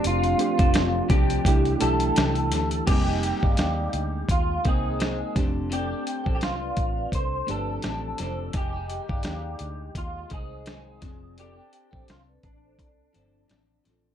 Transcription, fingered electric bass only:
0.05 0.33 F1 loud
0.59 1.00 F1 medium
1.10 1.38 C2 medium
1.45 1.74 C2 loud
1.82 2.10 B1 medium
2.17 2.52 C2 medium
2.52 2.80 D2 loud
2.88 3.31 F1 medium
3.43 3.55 G1 medium
3.59 3.87 D#2 medium
3.94 4.22 D2 medium
4.29 4.57 D#2 loud
4.65 5.22 C2 medium
5.36 5.93 F1 medium
6.26 6.42 A1 medium
6.42 6.70 C2 medium
6.78 7.06 A1 medium
7.12 7.41 C2 medium
7.49 7.77 G1 medium
7.85 8.13 A1 medium
8.20 8.48 F1 medium
8.54 8.98 F1 loud
9.09 9.22 G1 medium
9.26 9.54 D#2 medium
9.61 9.89 D2 medium
9.95 10.24 D#2 medium
10.32 11.04 C2 medium
11.02 11.59 F1 medium
11.93 12.06 A1 medium
12.09 12.37 C2 medium
12.44 12.79 A1 medium
12.79 13.07 C2 medium
13.16 13.44 G1 medium
13.50 13.79 A1 medium
13.86 14.14 A1 medium

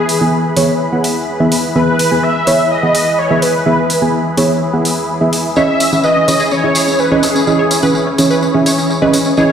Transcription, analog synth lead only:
0.00 0.53 G#4 medium
1.75 2.25 B4 loud
2.23 2.72 E5 loud
2.71 3.20 D#5 loud
3.18 3.44 C#5 medium
3.42 4.14 B4 medium
5.57 6.01 E5 loud
6.04 6.53 D#5 loud
6.52 7.01 C#5 loud
6.99 7.25 B4 medium
7.23 8.18 G#4 medium
9.38 9.52 C#5 loud

